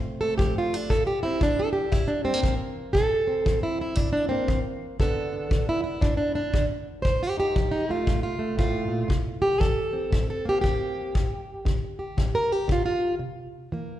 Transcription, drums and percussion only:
0.39 kick
0.90 kick
1.41 kick
1.92 kick
2.44 kick
2.95 kick
3.46 kick
3.97 kick
4.48 kick
5.00 kick
5.51 kick
6.02 kick
6.54 kick
7.05 kick
7.56 kick
8.07 kick
8.59 kick
9.10 kick
9.61 kick
10.13 kick
10.64 kick
11.15 kick
11.66 kick
12.18 kick
12.69 kick

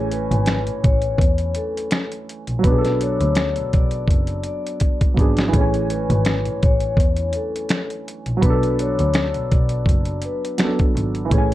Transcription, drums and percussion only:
0.12 closed hi-hat
0.31 closed hi-hat
0.46 finger snap, snare, closed hi-hat
0.67 closed hi-hat
0.84 kick, closed hi-hat
1.02 closed hi-hat
1.18 kick, closed hi-hat
1.38 closed hi-hat
1.55 closed hi-hat
1.77 closed hi-hat
1.91 finger snap, snare, closed hi-hat
2.12 closed hi-hat
2.29 closed hi-hat
2.47 closed hi-hat
2.64 kick, closed hi-hat
2.85 snare, closed hi-hat
3.01 closed hi-hat
3.21 closed hi-hat
3.35 finger snap, snare, closed hi-hat
3.56 closed hi-hat
3.73 kick, closed hi-hat
3.91 closed hi-hat
4.08 kick, closed hi-hat
4.27 closed hi-hat
4.43 closed hi-hat
4.67 closed hi-hat
4.80 kick, closed hi-hat
5.01 kick, closed hi-hat
5.17 kick, closed hi-hat
5.37 snare, closed hi-hat
5.53 kick, closed hi-hat
5.74 closed hi-hat
5.90 closed hi-hat
6.10 closed hi-hat
6.25 finger snap, snare, closed hi-hat
6.45 closed hi-hat
6.63 kick, closed hi-hat
6.80 closed hi-hat
6.97 kick, closed hi-hat
7.16 closed hi-hat
7.33 closed hi-hat
7.56 closed hi-hat
7.69 finger snap, snare, closed hi-hat
7.90 closed hi-hat
8.08 closed hi-hat
8.26 closed hi-hat
8.42 kick, closed hi-hat
8.63 closed hi-hat
8.79 closed hi-hat
8.99 closed hi-hat
9.14 finger snap, snare, closed hi-hat
9.34 closed hi-hat
9.52 kick, closed hi-hat
9.69 closed hi-hat
9.86 kick, closed hi-hat
10.05 closed hi-hat
10.22 closed hi-hat
10.45 closed hi-hat
10.58 finger snap, snare, closed hi-hat
10.79 kick, closed hi-hat
10.97 closed hi-hat
11.15 closed hi-hat
11.31 kick, closed hi-hat

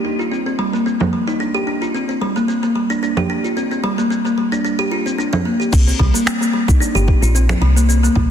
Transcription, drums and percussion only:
0.21 cabasa
0.33 cabasa
0.48 cabasa
0.75 cabasa
0.87 cabasa
1.01 low conga, cabasa
1.29 cabasa
1.41 cabasa
1.56 cabasa
1.83 cabasa
1.95 cabasa
2.10 cabasa
2.37 cabasa
2.49 cabasa
2.64 cabasa
2.91 cabasa
3.03 cabasa
3.17 low conga, cabasa
3.45 cabasa
3.57 cabasa
3.72 cabasa
3.99 cabasa
4.12 cabasa
4.26 cabasa
4.53 cabasa
4.65 cabasa
4.80 cabasa
5.07 cabasa
5.20 cabasa
5.33 low conga, cabasa
5.61 cabasa
5.73 kick, crash, cabasa
5.88 cabasa
6.00 kick
6.15 cabasa
6.27 finger snap, cabasa
6.42 cabasa
6.69 kick, cabasa
6.82 cabasa
6.96 cabasa
7.08 kick
7.23 cabasa
7.36 cabasa
7.49 finger snap, low conga, cabasa
7.77 cabasa
7.90 cabasa
8.04 cabasa
8.16 kick

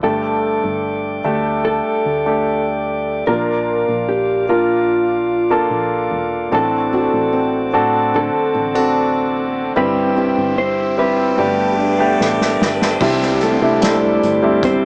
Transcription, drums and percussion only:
12.21 snare
12.41 snare
12.62 snare
12.82 snare
13.01 kick, crash
13.22 snare
13.41 closed hi-hat
13.82 snare, closed hi-hat
14.23 closed hi-hat
14.63 kick, closed hi-hat

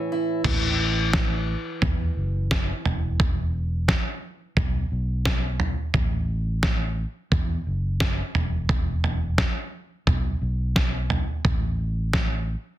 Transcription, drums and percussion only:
0.44 kick, floor tom, crash
1.13 kick, snare
1.82 kick, floor tom
2.51 kick, snare
2.85 floor tom
3.20 kick, floor tom
3.88 kick, snare
4.57 kick, floor tom
5.25 kick, snare
5.60 floor tom
5.94 kick, floor tom
6.63 kick, snare
7.32 kick, floor tom
8.00 kick, snare
8.35 floor tom
8.69 kick, floor tom
9.04 floor tom
9.38 kick, snare
10.07 kick, floor tom
10.76 kick, snare
11.10 floor tom
11.45 kick, floor tom
12.13 kick, snare

